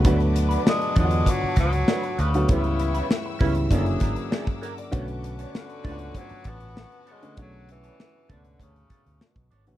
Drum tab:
HH |xxxx-xxxx-xx-xxx|xxxx--oxxxxx-xxx|xxxx-xoxxxxx-xxx|x-xx--xxxxxx-xxx|
SD |----o-----o-o---|----o-----o-o---|----o-------o---|----o-------o---|
BD |o-----o-o-o-----|o-----o-o-o--o--|o-----o-o-o-----|o-----o-o-o--o--|